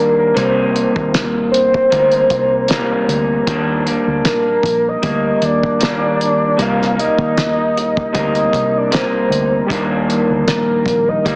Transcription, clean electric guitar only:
0.00 0.34 D#3 soft
0.00 0.36 G3 medium
0.00 0.37 A#3 medium
0.00 0.37 D4 medium
0.34 1.89 C3 medium
0.34 1.91 G3 medium
0.34 1.92 A#3 medium
0.39 1.93 D#4 medium
1.90 2.68 C3 medium
1.90 2.70 G3 medium
1.90 2.71 A#3 medium
1.90 2.72 D#4 medium
2.70 3.46 C3 medium
2.70 3.48 G3 medium
2.70 3.48 A#3 medium
2.70 3.49 D#4 medium
3.47 3.86 D#3 medium
3.47 3.87 G3 medium
3.47 3.87 A#3 medium
3.47 3.85 D4 medium
3.86 5.02 G3 soft
3.86 5.03 A#3 soft
3.86 5.03 D4 medium
5.02 5.80 G3 medium
5.02 5.81 A#3 medium
5.80 6.57 D#3 medium
5.80 6.58 G3 medium
5.80 6.59 A#3 medium
5.80 6.59 D4 medium
6.57 6.97 C3 medium
6.57 6.97 G3 medium
6.57 6.96 A#3 medium
6.57 6.94 D#4 medium
6.95 8.14 G3 soft
6.95 8.15 A#3 soft
6.95 8.15 D#4 soft
8.13 8.89 C3 soft
8.13 8.91 G3 medium
8.13 8.92 A#3 medium
8.13 8.93 D#4 medium
8.91 9.68 C3 soft
8.91 9.69 G3 medium
8.91 9.71 A#3 medium
8.91 9.72 D#4 medium
9.68 11.36 D#3 medium
9.68 11.25 G3 medium
9.68 11.25 A#3 medium
9.68 11.26 D4 medium
11.25 11.36 G3 medium
11.25 11.36 A#3 medium

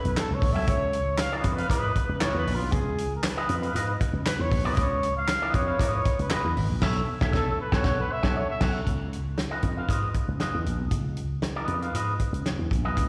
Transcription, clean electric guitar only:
0.55 0.73 A4 medium
0.55 0.72 C#5 medium
0.55 0.72 E5 medium
1.32 1.53 F4 medium
1.32 1.53 B4 medium
1.32 1.52 D#5 medium
1.58 1.68 F4 soft
1.58 1.69 B4 medium
1.58 1.70 F5 medium
1.69 1.90 F4 medium
1.69 1.90 B4 medium
1.69 1.91 D#5 medium
2.20 2.41 F4 medium
2.20 2.42 B4 medium
2.20 2.42 D#5 medium
3.37 3.54 F4 medium
3.37 3.54 B4 medium
3.37 3.54 D#5 medium
3.62 3.73 F4 medium
3.62 3.74 B4 medium
3.62 3.75 F5 medium
3.75 3.92 F4 medium
3.75 3.92 B4 medium
3.75 3.93 D#5 loud
4.65 4.86 F4 medium
4.65 4.85 B4 medium
4.65 4.85 D#5 medium
5.42 5.62 F4 medium
5.42 5.62 B4 medium
5.42 5.62 D#5 medium
5.67 5.78 F4 soft
5.67 5.78 B4 medium
5.67 5.80 F5 medium
5.79 6.00 F4 medium
5.79 6.00 B4 loud
5.79 6.00 D#5 medium
6.31 6.48 F4 medium
6.31 6.48 B4 loud
6.31 6.49 D#5 medium
6.82 7.00 A4 loud
6.82 7.00 C#5 loud
6.82 7.00 E5 loud
7.21 7.32 A4 loud
7.21 7.32 C#5 loud
7.21 7.31 E5 loud
7.32 7.51 A4 medium
7.32 7.51 C#5 medium
7.32 7.50 E5 medium
7.72 7.83 A4 loud
7.72 7.83 C#5 loud
7.72 7.82 F#5 loud
7.84 8.03 A4 loud
7.84 8.03 C#5 loud
7.84 8.02 F#5 loud
8.23 8.41 A4 loud
8.23 8.40 C#5 loud
8.23 8.40 F#5 loud
8.60 8.79 A4 loud
8.60 8.79 C#5 loud
8.60 8.78 F#5 loud
9.51 9.68 F4 medium
9.51 9.68 B4 medium
9.51 9.68 D#5 medium
9.77 9.88 F4 soft
9.77 9.89 B4 soft
9.77 9.90 F5 medium
9.89 10.07 F4 medium
9.89 10.07 B4 medium
9.89 10.07 D#5 medium
10.40 10.58 F4 medium
10.40 10.58 B4 medium
10.40 10.58 D#5 medium
11.56 11.77 F4 medium
11.56 11.77 B4 medium
11.56 11.76 D#5 medium
11.82 11.94 F4 medium
11.82 11.94 B4 medium
11.82 11.95 F5 medium
11.95 12.12 F4 medium
11.95 12.13 B4 medium
11.95 12.13 D#5 medium
12.85 13.02 F4 medium
12.85 13.02 B4 medium
12.85 13.01 D#5 medium

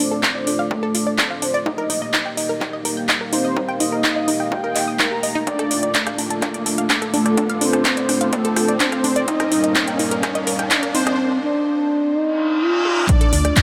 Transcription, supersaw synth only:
0.00 0.61 C5 medium
0.71 1.18 A4 medium
1.18 1.62 C5 medium
1.66 2.28 D#5 loud
3.33 3.77 C5 medium
3.80 4.52 D#5 medium
4.52 4.96 G5 medium
4.99 5.43 A#5 medium
5.47 6.09 D5 loud
7.14 7.58 A4 medium
7.61 8.33 C5 loud
8.33 8.77 A4 medium
8.80 9.24 C5 loud
9.28 9.90 D#5 loud
10.95 11.18 C5 medium
13.09 13.62 D5 loud

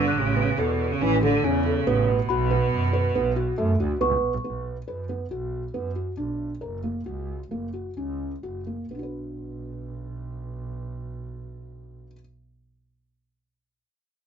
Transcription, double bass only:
0.00 0.13 G1 medium
0.16 0.56 A1 loud
0.59 0.99 E2 medium
1.02 1.42 A1 loud
1.44 1.85 E2 loud
1.87 2.28 A1 loud
2.30 2.70 B1 loud
2.72 3.13 F#2 medium
3.16 3.56 B1 medium
3.58 3.79 F#2 loud
3.80 4.00 D2 medium
4.02 4.21 C#2 loud
4.24 4.43 B1 medium
4.45 4.85 B1 medium
4.88 5.28 F#2 medium
5.31 5.72 B1 medium
5.75 6.15 F#2 medium
6.18 6.59 B1 medium
6.62 7.04 F#1 medium
7.06 7.48 C#2 medium
7.52 7.94 F#1 medium
7.97 8.41 C#2 medium
8.44 8.88 F#1 medium
8.91 12.07 B1 medium

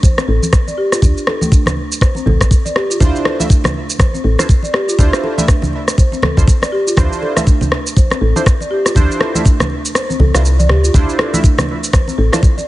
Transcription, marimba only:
0.03 0.17 C5 medium
0.18 0.27 C4 medium
0.28 0.42 A4 medium
0.67 0.77 D5 medium
0.78 0.91 G4 medium
0.92 1.01 F4 medium
1.02 1.16 D4 medium
1.27 1.41 A4 medium
1.41 1.51 A3 medium
1.52 1.66 D4 medium
2.01 2.15 C5 medium
2.16 2.25 C4 medium
2.26 2.40 A4 medium
2.65 2.75 D5 medium
2.76 2.90 G4 medium
2.90 3.00 F4 medium
3.01 3.15 D4 medium
3.25 3.39 A4 medium
3.40 3.50 A3 medium
3.50 3.64 D4 medium
4.00 4.14 C5 medium
4.14 4.23 C4 medium
4.24 4.38 A4 medium
4.63 4.73 D5 medium
4.73 4.88 G4 loud
4.88 4.98 F4 medium
4.99 5.13 D4 medium
5.23 5.38 A4 loud
5.38 5.48 A3 medium
5.48 5.62 D4 medium
5.98 6.12 C5 medium
6.13 6.22 C4 medium
6.23 6.37 A4 medium
6.62 6.72 D5 medium
6.72 6.86 G4 loud
6.87 6.96 F4 medium
6.97 7.11 D4 medium
7.22 7.36 A4 medium
7.36 7.46 A3 medium
7.47 7.61 D4 medium
7.97 8.10 C5 medium
8.11 8.20 C4 medium
8.21 8.35 A4 loud
8.61 8.70 D5 medium
8.71 8.85 G4 medium
8.85 8.95 F4 medium
8.96 9.10 D4 medium
9.20 9.34 A4 loud
9.34 9.45 A3 medium
9.45 9.59 D4 medium
9.95 10.09 C5 medium
10.09 10.19 C4 medium
10.20 10.34 A4 medium
10.59 10.69 D5 medium
10.69 10.83 G4 medium
10.84 10.93 F4 medium
10.94 11.08 D4 medium
11.19 11.33 A4 medium
11.33 11.43 A3 medium
11.44 11.58 D4 medium
11.93 12.07 C5 medium
12.08 12.17 C4 medium
12.18 12.32 A4 loud
12.57 12.67 D5 medium

